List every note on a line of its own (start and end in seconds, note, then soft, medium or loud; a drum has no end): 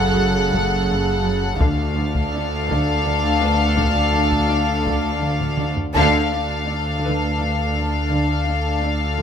0.00 1.58 F#1 soft
0.00 1.63 F#1 medium
0.00 1.58 F#2 soft
0.00 1.58 C#3 medium
0.00 1.58 A4 medium
0.00 1.58 F#5 medium
0.17 0.39 F#3 soft
0.52 0.75 F#2 medium
0.52 taiko medium
0.90 1.12 F#2 soft
1.25 1.47 F#3 soft
1.60 5.95 D2 medium
1.60 5.71 D2 medium
1.60 5.72 D2 medium
1.60 1.83 D3 medium
1.60 5.72 D4 medium
1.60 5.71 A4 medium
1.60 5.71 F5 medium
1.60 taiko medium
1.97 2.19 D3 soft
2.15 taiko medium
2.34 2.56 D4 soft
2.69 2.91 D3 medium
2.69 taiko medium
3.04 3.27 D3 soft
3.41 5.97 B3 soft
3.41 3.63 D4 soft
3.41 5.98 B4 soft
3.77 3.99 D3 medium
3.77 taiko medium
4.14 4.36 D3 soft
4.32 taiko medium
4.48 8.39 D4 soft
4.48 4.72 D4 soft
4.48 8.38 D5 soft
4.86 5.08 D3 soft
4.86 taiko medium
5.23 5.45 D3 soft
5.41 taiko low-mid medium
5.59 5.81 D4 soft
5.59 taiko mid medium
5.76 taiko low medium
5.94 9.22 D2 medium
5.94 6.17 D3 medium
5.94 9.22 D4 medium
5.94 9.22 A4 medium
5.94 9.22 F5 medium
5.94 taiko medium
6.32 6.53 D4 soft
6.67 6.89 D4 soft
7.03 7.25 D3 soft
7.03 9.22 B4 soft
7.40 7.62 D3 soft
7.75 7.97 D3 soft
8.11 8.33 D3 soft
8.47 8.69 D4 soft
8.84 9.06 D4 soft